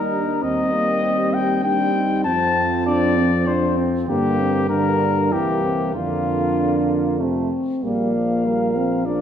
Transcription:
Already playing: tuba D#2, trombone G3, french horn D#4, flugelhorn D#4, trumpet A#4
0.11 french horn D4
0.42 tuba D#2, trombone G3, french horn C4, flugelhorn C4, trumpet D#5
0.73 french horn A#3
1.03 french horn C4
1.34 trumpet G5
1.64 trombone G3, flugelhorn C4, french horn D4, trumpet G5
1.95 french horn D#4
2.25 tuba F2, trombone F3, french horn C4, flugelhorn C4, trumpet A5
2.87 french horn D4, trumpet D5
3.17 french horn C4
3.48 trombone F3, flugelhorn C4, french horn D4, trumpet C5
3.78 french horn C4
4.08 tuba G2, trombone D3, french horn A#3, flugelhorn A#3, trumpet G4
4.39 french horn C4
4.69 trombone D3, flugelhorn A#3, french horn D4, trumpet A#4
5.32 tuba C2, trombone E3, flugelhorn A#3, french horn E4, trumpet G4
5.64 french horn C4
5.95 tuba F2, trombone D3, flugelhorn A#3, french horn D4, trumpet F4
7.20 trombone C3, flugelhorn A3, french horn C4
7.83 tuba A#1, trombone G3, french horn A#3, flugelhorn D5, trumpet F5
8.14 trombone F3
8.45 trombone G3, flugelhorn A#4
8.76 trombone F3, french horn C4
9.06 trombone F3, french horn D4, flugelhorn A#4, trumpet D5

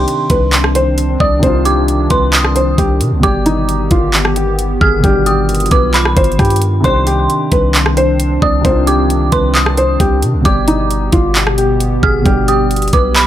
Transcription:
Already playing: grand piano C3 D#3 D4 G4, analog synth pad D#3 C4 D4, felt piano G4, synth bell C6
0.08 closed hi-hat
0.30 808-style bass C2, felt piano B4, kick, closed hi-hat
0.53 clap, closed hi-hat
0.64 cross-stick
0.75 felt piano C5, closed hi-hat
0.98 closed hi-hat
1.20 808-style bass C2, felt piano D5, synth bell D#6, kick
1.39 808-style bass C2, grand piano C3 D#3, felt piano C5, kick, closed hi-hat
1.44 grand piano D4 F4
1.65 felt piano G4, synth bell D6, closed hi-hat
1.88 closed hi-hat
2.10 808-style bass C2, felt piano B4, synth bell C6, kick, closed hi-hat
2.33 synth bell D#6, clap, closed hi-hat
2.44 cross-stick
2.56 felt piano C5, closed hi-hat
2.78 808-style bass C2, felt piano G4, kick, closed hi-hat
3.01 808-style bass C3, closed hi-hat
3.12 808-style bass C2
3.20 808-style bass G1, grand piano B2 G3, analog synth pad B3 G4, felt piano G4, synth bell D6, kick, closed hi-hat
3.25 grand piano G4 D5
3.46 felt piano D#4, closed hi-hat
3.69 closed hi-hat
3.91 808-style bass G1, felt piano F4, kick, closed hi-hat
4.14 clap, closed hi-hat
4.25 cross-stick
4.36 felt piano G4, closed hi-hat
4.59 closed hi-hat
4.81 808-style bass G1, felt piano G#4, synth bell F6, kick
5.00 808-style bass G1, grand piano B2 G3, felt piano G4, closed hi-hat
5.04 grand piano D4 G4, analog synth pad F4, kick
5.26 felt piano G4, synth bell D#6, closed hi-hat
5.49 closed hi-hat
5.55 closed hi-hat
5.60 closed hi-hat
5.66 closed hi-hat
5.71 808-style bass B1, felt piano B4, synth bell D6, kick, closed hi-hat
5.94 synth bell B5, clap, closed hi-hat
6.05 cross-stick
6.17 808-style bass G1, felt piano C5, kick, closed hi-hat
6.24 closed hi-hat
6.32 closed hi-hat
6.39 808-style bass G2, felt piano G4, kick, cross-stick, closed hi-hat
6.45 closed hi-hat
6.50 closed hi-hat
6.56 closed hi-hat
6.62 closed hi-hat
6.80 808-style bass C2, grand piano C3 D#3, analog synth pad C4 D4, synth bell C6, kick, closed hi-hat
6.85 grand piano D4 G4, felt piano C5
7.07 felt piano G4, closed hi-hat
7.30 closed hi-hat
7.52 808-style bass C2, felt piano B4, kick, closed hi-hat
7.75 clap, closed hi-hat
7.86 cross-stick
7.97 felt piano C5, closed hi-hat
8.20 closed hi-hat
8.42 808-style bass C2, felt piano D5, synth bell D#6, kick
8.61 808-style bass C2, grand piano C3 D#3, felt piano C5, kick, closed hi-hat
8.66 grand piano D4 F4
8.87 felt piano G4, synth bell D6, closed hi-hat
9.10 closed hi-hat
9.32 808-style bass C2, felt piano B4, synth bell C6, kick, closed hi-hat
9.55 synth bell D#6, clap, closed hi-hat
9.66 cross-stick
9.77 felt piano C5, closed hi-hat
10.00 808-style bass C2, felt piano G4, kick, closed hi-hat
10.22 808-style bass C3, closed hi-hat
10.34 808-style bass C2
10.41 808-style bass G1, grand piano B2 G3, analog synth pad B2 B3 G4, felt piano G4, kick, closed hi-hat
10.45 grand piano G4 D5, synth bell D6
10.68 felt piano D#4, closed hi-hat
10.91 closed hi-hat
11.12 808-style bass G1, felt piano F4, kick, closed hi-hat
11.35 clap, closed hi-hat
11.47 cross-stick
11.58 felt piano G4, closed hi-hat
11.80 closed hi-hat
12.03 808-style bass G1, felt piano G#4, synth bell F6, kick
12.22 grand piano B2 G3, felt piano G4
12.26 808-style bass G1, grand piano D4 G4, kick, closed hi-hat
12.48 felt piano G4, synth bell D#6, closed hi-hat
12.71 closed hi-hat
12.76 closed hi-hat
12.82 closed hi-hat
12.88 closed hi-hat
12.93 808-style bass B1, felt piano B4, synth bell D6, kick, closed hi-hat
13.16 synth bell B5, clap, closed hi-hat

